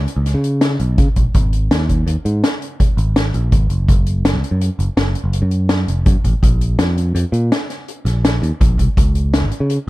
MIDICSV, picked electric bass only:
0, 0, Header, 1, 2, 480
1, 0, Start_track
1, 0, Tempo, 362976
1, 1780, Time_signature, 7, 2, 24, 8
1, 13084, End_track
2, 0, Start_track
2, 0, Title_t, "Picked electric bass"
2, 0, Program_c, 0, 34
2, 217, Note_on_c, 0, 37, 79
2, 438, Note_off_c, 0, 37, 0
2, 453, Note_on_c, 0, 49, 81
2, 1007, Note_off_c, 0, 49, 0
2, 1056, Note_on_c, 0, 35, 82
2, 1278, Note_off_c, 0, 35, 0
2, 1298, Note_on_c, 0, 49, 81
2, 1409, Note_off_c, 0, 49, 0
2, 1540, Note_on_c, 0, 34, 75
2, 1650, Note_off_c, 0, 34, 0
2, 1781, Note_on_c, 0, 32, 96
2, 2221, Note_off_c, 0, 32, 0
2, 2261, Note_on_c, 0, 39, 84
2, 2702, Note_off_c, 0, 39, 0
2, 2731, Note_on_c, 0, 39, 83
2, 2846, Note_off_c, 0, 39, 0
2, 2978, Note_on_c, 0, 44, 81
2, 3199, Note_off_c, 0, 44, 0
2, 3931, Note_on_c, 0, 32, 84
2, 4376, Note_off_c, 0, 32, 0
2, 4421, Note_on_c, 0, 34, 80
2, 4637, Note_off_c, 0, 34, 0
2, 4657, Note_on_c, 0, 32, 76
2, 4875, Note_off_c, 0, 32, 0
2, 4889, Note_on_c, 0, 30, 70
2, 5110, Note_off_c, 0, 30, 0
2, 5136, Note_on_c, 0, 30, 93
2, 5733, Note_on_c, 0, 37, 73
2, 5753, Note_off_c, 0, 30, 0
2, 5847, Note_off_c, 0, 37, 0
2, 5968, Note_on_c, 0, 42, 75
2, 6194, Note_off_c, 0, 42, 0
2, 6332, Note_on_c, 0, 30, 90
2, 6446, Note_off_c, 0, 30, 0
2, 6570, Note_on_c, 0, 30, 77
2, 6796, Note_off_c, 0, 30, 0
2, 6926, Note_on_c, 0, 30, 79
2, 7153, Note_off_c, 0, 30, 0
2, 7165, Note_on_c, 0, 42, 80
2, 7724, Note_off_c, 0, 42, 0
2, 7774, Note_on_c, 0, 29, 84
2, 7998, Note_off_c, 0, 29, 0
2, 8014, Note_on_c, 0, 42, 80
2, 8128, Note_off_c, 0, 42, 0
2, 8260, Note_on_c, 0, 33, 75
2, 8371, Note_off_c, 0, 33, 0
2, 8498, Note_on_c, 0, 34, 92
2, 8940, Note_off_c, 0, 34, 0
2, 8974, Note_on_c, 0, 41, 85
2, 9418, Note_off_c, 0, 41, 0
2, 9451, Note_on_c, 0, 41, 78
2, 9566, Note_off_c, 0, 41, 0
2, 9683, Note_on_c, 0, 46, 83
2, 9912, Note_off_c, 0, 46, 0
2, 10647, Note_on_c, 0, 34, 86
2, 11095, Note_off_c, 0, 34, 0
2, 11134, Note_on_c, 0, 39, 87
2, 11248, Note_off_c, 0, 39, 0
2, 11381, Note_on_c, 0, 34, 100
2, 11602, Note_off_c, 0, 34, 0
2, 11626, Note_on_c, 0, 36, 73
2, 11734, Note_off_c, 0, 36, 0
2, 11866, Note_on_c, 0, 37, 93
2, 12455, Note_on_c, 0, 32, 77
2, 12475, Note_off_c, 0, 37, 0
2, 12568, Note_off_c, 0, 32, 0
2, 12699, Note_on_c, 0, 49, 77
2, 12921, Note_off_c, 0, 49, 0
2, 13084, End_track
0, 0, End_of_file